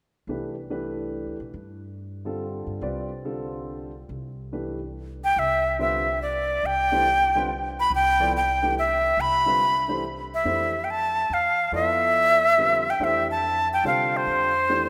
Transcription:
0.27 upright bass C2, grand piano E3 A3 D4 G4 B4
0.70 grand piano E3 A3 D4 G4 B4
1.26 upright bass D2
1.40 upright bass B1
1.54 upright bass G2
2.25 grand piano D3 G3 C4 F4 A4
2.67 upright bass G2
2.81 upright bass C2, grand piano G3 C4 F4 B4 D5
3.25 grand piano D3 G3 C4 F4 A4
4.09 upright bass C2
4.52 grand piano E3 A3 D4 G4 B4
5.24 flute G5
5.36 upright bass C2, flute E5
5.79 grand piano D3 G3 C4 F4 B4, flute E5
6.22 flute D5
6.63 upright bass C2, flute G5
6.91 grand piano E3 A3 D4 G4 C5
7.35 grand piano D3 G3 C4 F4 B4
7.80 flute B5
7.90 upright bass C2
7.95 flute G5
8.20 grand piano F3 B3 E4 A4 D5
8.37 flute G5
8.62 grand piano E3 A3 D4 G4 B4
8.79 flute E5
9.17 upright bass C2, flute B5
9.46 grand piano D3 G3 C4 F4 B4
9.88 grand piano E3 A3 D4 G4 C5
10.34 flute E5
10.44 upright bass F2, grand piano E3 A3 D4 G4 C5
10.84 flute G5
10.90 flute A5
11.30 upright bass E2, flute F5
11.72 upright bass F2, grand piano F3 B3 E4 A4 D5, flute E5
12.58 grand piano D3 G3 C4 F4 B4
12.90 flute G5
12.99 upright bass F2, grand piano E3 A3 D4 G4 C5
13.04 flute E5
13.31 flute A5
13.73 flute G5
13.84 upright bass C3, grand piano D3 G3 C4 F4 C5, flute F5
14.17 flute C5
14.27 upright bass F2
14.69 grand piano E3 A3 D4 G4 C5

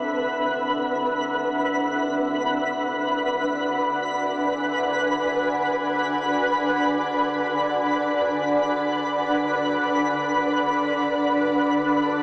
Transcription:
Already playing: harmonium D3, ambient pad C4 D4 A4 E5 F#5, synth texture B4 B5
2.14 ambient pad B5
2.48 ambient pad D5
3.52 ambient pad G#5
10.82 ambient pad A5

